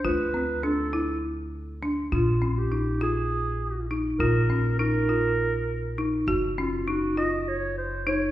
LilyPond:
<<
  \new Staff \with { instrumentName = "Clarinet" } { \time 7/8 \key bes \dorian \tempo 4 = 101 b'4 a'4 r4. | f'8. g'8. aes'4. r8 | bes'4 bes'2 r8 | r8 f'8 ges'8 ees''8 des''8 c''8 des''8 | }
  \new Staff \with { instrumentName = "Marimba" } { \time 7/8 \key bes \dorian f'8 c'8 d'8 e'4 r8 d'8 | f'8 des'8 ees'8 f'4 r8 ees'8 | f'8 des'8 ees'8 f'4 r8 ees'8 | ges'8 des'8 ees'8 f'4 r8 ees'8 | }
  \new Staff \with { instrumentName = "Upright bass" } { \clef bass \time 7/8 \key bes \dorian d,2.~ d,8 | bes,,2.~ bes,,8 | bes,,2.~ bes,,8 | ges,,2.~ ges,,8 | }
>>